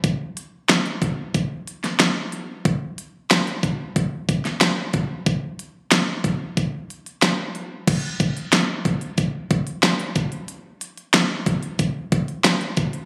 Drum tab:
CC |----------------|----------------|----------------|x---------------|
HH |x-x-xxx-x-xxx-x-|x-x-xxx-x-xxx-x-|x-x-x-x-x-xxx-x-|x-xxx-xxx-xxxxxx|
SD |----o------oo---|----o------oo---|----o-------o---|----o-------o---|
BD |o-----o-o-------|o-----o-o-o---o-|o-----o-o-------|o-o---o-o-o---o-|

CC |----------------|
HH |x-xxx-xxx-xxxxxx|
SD |----o-------o---|
BD |------o-o-o---o-|